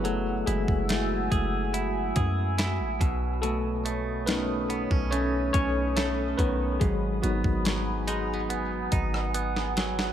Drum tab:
HH |x-x-x-x-x-x-x-x-|x-x-x-x-x-x-x-x-|x-x-x-x-x-x-x-x-|
SD |----o-------o---|----o-------o---|----o------r-ooo|
BD |---o--o---o---o-|-------o--o---o-|o--o------o-----|